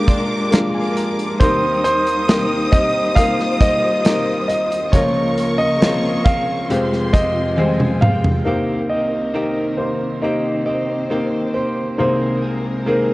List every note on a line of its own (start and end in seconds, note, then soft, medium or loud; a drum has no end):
0.00 1.36 A#1 medium
0.00 1.36 A#2 medium
0.00 0.51 G#3 loud
0.00 1.36 G#3 medium
0.00 0.51 A#3 medium
0.00 0.52 D4 medium
0.00 1.37 D4 medium
0.00 0.52 F4 medium
0.00 0.48 G4 loud
0.00 0.53 A#4 medium
0.00 1.37 A#4 medium
0.00 0.48 F5 medium
0.00 1.36 D6 loud
0.07 0.52 G#3 medium
0.07 0.53 D4 medium
0.07 0.52 F4 medium
0.07 0.49 D5 medium
0.07 kick medium
0.07 closed hi-hat medium
0.51 1.40 F3 medium
0.51 1.35 G#3 medium
0.51 1.40 G#3 medium
0.51 1.35 A#3 medium
0.51 1.36 D4 medium
0.51 1.41 D4 medium
0.51 1.36 F4 medium
0.51 1.41 F4 medium
0.51 1.36 A#4 loud
0.51 0.72 F5 medium
0.51 snare loud
0.51 closed hi-hat loud
0.74 0.95 G#5 medium
0.96 1.37 A#5 medium
0.96 closed hi-hat medium
1.19 closed hi-hat medium
1.39 4.90 D#2 medium
1.39 2.27 D#3 medium
1.39 4.90 D#3 medium
1.39 2.24 G3 medium
1.39 4.90 G3 medium
1.39 2.29 A#3 medium
1.39 2.25 A#3 medium
1.39 2.29 C4 medium
1.39 2.25 C4 medium
1.39 3.15 D#4 medium
1.39 2.25 D#4 medium
1.39 2.29 G4 medium
1.39 2.25 A#4 loud
1.39 1.83 C5 loud
1.39 4.90 C5 medium
1.39 4.93 D#6 loud
1.39 kick loud
1.39 closed hi-hat medium
1.84 2.75 C5 loud
1.84 closed hi-hat medium
2.06 closed hi-hat medium
2.28 2.72 D#3 medium
2.28 3.12 G3 medium
2.28 3.13 A#3 medium
2.28 2.73 A#3 medium
2.28 3.13 C4 medium
2.28 2.73 C4 medium
2.28 3.13 D#4 medium
2.28 2.71 G4 medium
2.28 3.13 A#4 medium
2.28 snare loud
2.28 closed hi-hat medium
2.72 3.63 A#3 soft
2.72 3.61 C4 medium
2.72 3.59 G4 medium
2.72 3.18 D#5 loud
2.72 kick loud
2.72 closed hi-hat medium
3.15 4.01 G3 medium
3.15 4.01 A#3 medium
3.15 4.01 C4 medium
3.15 4.01 D#4 medium
3.15 4.91 F4 medium
3.15 4.02 A#4 medium
3.15 3.62 F5 loud
3.15 kick loud
3.15 closed hi-hat loud
3.40 snare soft
3.60 4.04 A#3 soft
3.60 4.05 C4 soft
3.60 4.05 G4 medium
3.60 4.45 D#5 loud
3.60 kick loud
3.60 closed hi-hat medium
4.04 4.93 D#3 medium
4.04 4.89 G3 medium
4.04 4.93 A#3 medium
4.04 4.89 A#3 medium
4.04 4.89 C4 medium
4.04 4.96 C4 medium
4.04 4.90 D#4 medium
4.04 4.94 G4 medium
4.04 4.90 A#4 medium
4.04 snare loud
4.04 closed hi-hat medium
4.48 4.94 D#5 medium
4.48 closed hi-hat medium
4.72 closed hi-hat medium
4.92 6.66 C#2 medium
4.92 5.81 C#3 medium
4.92 6.68 C#3 medium
4.92 6.66 C#3 medium
4.92 5.77 F3 medium
4.92 5.80 F3 medium
4.92 6.68 A#3 medium
4.92 5.77 A#3 medium
4.92 5.81 A#3 medium
4.92 5.78 C#4 medium
4.92 5.83 F4 medium
4.92 6.68 A#4 medium
4.92 5.78 A#4 loud
4.92 5.61 C#5 medium
4.92 6.70 C#6 loud
4.92 kick loud
4.92 closed hi-hat medium
5.38 closed hi-hat medium
5.58 6.27 D#5 loud
5.81 6.65 F3 medium
5.81 6.25 F3 medium
5.81 6.65 A#3 medium
5.81 6.26 A#3 medium
5.81 6.65 C4 medium
5.81 6.26 C4 medium
5.81 6.66 C#4 medium
5.81 6.24 F4 medium
5.81 6.66 G#4 medium
5.81 snare loud
5.81 closed hi-hat medium
6.25 6.70 A#3 soft
6.25 6.69 C4 medium
6.25 6.69 F4 medium
6.25 7.98 F5 medium
6.25 kick loud
6.25 closed hi-hat medium
6.69 8.43 F1 medium
6.69 7.14 F2 medium
6.69 8.43 F2 medium
6.69 7.14 C3 medium
6.69 7.14 F3 medium
6.69 8.45 F3 medium
6.69 7.54 G#3 medium
6.69 7.14 G#3 medium
6.69 8.45 C4 medium
6.69 7.54 C4 medium
6.69 7.13 C4 medium
6.69 8.45 F4 medium
6.69 7.54 F4 medium
6.69 7.12 G4 medium
6.69 7.54 G4 medium
6.69 7.54 C5 medium
6.69 7.58 C6 loud
6.69 closed hi-hat loud
6.93 snare soft
7.13 7.56 F3 soft
7.13 7.57 G#3 medium
7.13 7.58 C4 soft
7.13 7.57 G4 medium
7.13 8.04 D#5 medium
7.13 kick loud
7.13 closed hi-hat medium
7.57 8.46 F3 medium
7.57 8.42 G3 medium
7.57 8.41 G#3 medium
7.57 8.46 G#3 medium
7.57 8.42 C4 medium
7.57 8.47 C4 medium
7.57 8.42 F4 medium
7.57 8.42 C5 medium
7.57 8.02 G#5 medium
7.57 high tom medium
7.80 mid tom medium
8.01 8.44 F5 medium
8.01 8.46 G5 medium
8.01 mid tom loud
8.24 floor tom loud
8.45 11.95 C2 soft
8.45 8.90 C3 medium
8.45 11.95 C3 soft
8.45 8.90 D#3 medium
8.45 11.96 D#3 medium
8.45 9.29 A#3 medium
8.45 8.90 A#3 medium
8.45 13.14 C4 soft
8.45 8.90 C4 medium
8.45 9.30 D#4 medium
8.45 9.30 G4 medium
8.45 8.89 G4 medium
8.45 10.21 A#4 medium
8.45 9.30 C5 medium
8.45 8.87 F5 medium
8.89 9.34 A#3 soft
8.89 9.34 C4 soft
8.89 9.34 G4 soft
8.89 9.81 D#5 medium
9.34 10.22 C3 medium
9.34 10.21 D#3 medium
9.34 9.76 A#3 medium
9.34 10.22 A#3 medium
9.34 10.24 C4 medium
9.34 9.76 D#4 medium
9.34 9.77 G4 medium
9.34 10.23 G4 medium
9.34 9.77 D#5 medium
9.77 10.20 A#3 medium
9.77 10.20 D#4 soft
9.77 10.21 G4 soft
9.77 10.19 C5 medium
9.77 10.21 C5 medium
10.22 10.66 D#3 soft
10.22 11.06 A#3 medium
10.22 10.67 A#3 soft
10.22 10.66 C4 medium
10.22 11.07 D#4 medium
10.22 11.07 G4 medium
10.22 10.65 G4 medium
10.22 11.97 C5 medium
10.22 11.07 C5 medium
10.22 10.65 D#5 medium
10.66 11.10 A#3 soft
10.66 11.10 C4 soft
10.66 11.10 G4 soft
10.66 11.57 D#5 medium
11.10 11.55 C3 medium
11.10 11.55 D#3 medium
11.10 11.94 A#3 medium
11.10 11.55 A#3 medium
11.10 11.54 C4 medium
11.10 11.95 D#4 medium
11.10 11.95 G4 soft
11.10 11.53 G4 medium
11.10 11.95 C5 medium
11.54 11.98 A#3 soft
11.54 11.99 C4 soft
11.54 11.99 G4 soft
11.54 11.96 C5 medium
11.98 13.14 C2 soft
11.98 12.43 C3 medium
11.98 13.14 C3 soft
11.98 13.14 C3 medium
11.98 12.43 D#3 medium
11.98 13.14 G#3 medium
11.98 12.83 A#3 medium
11.98 12.43 A#3 medium
11.98 12.43 C4 medium
11.98 12.83 D#4 medium
11.98 12.83 G#4 medium
11.98 12.41 G#4 medium
11.98 13.14 A#4 medium
11.98 12.83 C5 medium
11.98 12.84 C5 medium
12.42 12.86 A#3 soft
12.42 12.87 C4 soft
12.42 12.87 G#4 soft
12.86 13.14 C3 medium
12.86 13.14 D#3 medium
12.86 13.14 A#3 medium
12.86 13.14 C4 medium
12.86 13.14 D#4 medium
12.86 13.14 G#4 medium
12.86 13.14 A#4 medium
12.86 13.14 C5 medium